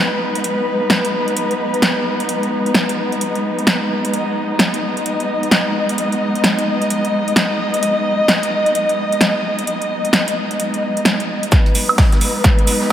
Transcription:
Already playing: G#3 B3 D#4 B4
0.35 closed hi-hat
0.44 closed hi-hat
0.90 snare, closed hi-hat
1.05 closed hi-hat
1.28 closed hi-hat
1.37 closed hi-hat
1.51 closed hi-hat
1.74 closed hi-hat
1.82 snare, closed hi-hat
2.20 closed hi-hat
2.29 closed hi-hat
2.43 closed hi-hat
2.66 closed hi-hat
2.74 snare, closed hi-hat
2.89 closed hi-hat
3.12 closed hi-hat
3.21 closed hi-hat
3.35 closed hi-hat
3.59 closed hi-hat
3.67 snare, closed hi-hat
4.05 closed hi-hat
4.13 D#5, closed hi-hat
4.59 snare, closed hi-hat
4.74 closed hi-hat
4.97 closed hi-hat
5.06 closed hi-hat
5.20 closed hi-hat
5.43 closed hi-hat
5.51 snare, closed hi-hat
5.89 closed hi-hat
5.98 closed hi-hat
6.12 closed hi-hat
6.35 closed hi-hat
6.44 snare, closed hi-hat
6.59 closed hi-hat
6.82 closed hi-hat
6.90 closed hi-hat
7.05 closed hi-hat
7.28 closed hi-hat
7.36 snare, closed hi-hat
7.74 closed hi-hat
7.83 closed hi-hat
8.28 snare, closed hi-hat
8.43 closed hi-hat
8.66 closed hi-hat
8.75 closed hi-hat
8.89 closed hi-hat
9.12 closed hi-hat
9.21 snare, closed hi-hat
9.59 closed hi-hat
9.67 closed hi-hat
9.82 closed hi-hat
10.05 closed hi-hat
10.13 snare, closed hi-hat
10.28 closed hi-hat
10.51 closed hi-hat
10.60 closed hi-hat
10.74 closed hi-hat
10.97 closed hi-hat
11.05 snare, closed hi-hat
11.20 closed hi-hat
11.43 closed hi-hat
11.52 G#3 B3 D#4 B4, kick, snare, closed hi-hat, shaker
11.66 closed hi-hat
11.75 open hi-hat, shaker
11.89 high woodblock
11.98 kick, snare, closed hi-hat, open hi-hat
12.12 snare, closed hi-hat
12.21 open hi-hat, shaker
12.44 kick, snare, closed hi-hat, shaker
12.59 closed hi-hat
12.67 open hi-hat, shaker
12.82 snare

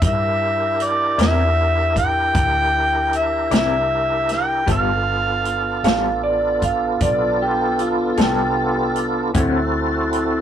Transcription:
0.02 G2 D4 E4 G4 A#4, kick, closed hi-hat
0.06 E5
0.80 D5, closed hi-hat
1.18 E2 C4 E4 A#4 D5 E5, snare, closed hi-hat
1.96 G5, kick, closed hi-hat
2.35 D2, kick, closed hi-hat
3.13 E5, closed hi-hat
3.51 C2 C4 E4 A#4 D5 E5, snare, closed hi-hat
4.29 G5, snare, closed hi-hat
4.66 G1 G3 B3 D4 F4 A4, kick, closed hi-hat
4.72 F5
5.45 closed hi-hat
5.83 A1 G3 B3 F4 A4 F5, snare, closed hi-hat
6.24 D5
6.62 F5, kick, closed hi-hat
7.00 B1 D5, kick, closed hi-hat
7.42 G4
7.79 F4, closed hi-hat
8.17 C2 G3 B3 F4 G4 A4, snare, closed hi-hat
8.96 closed hi-hat
9.34 D2 D3 C4 E4 F#4 A4, kick, closed hi-hat
10.13 closed hi-hat

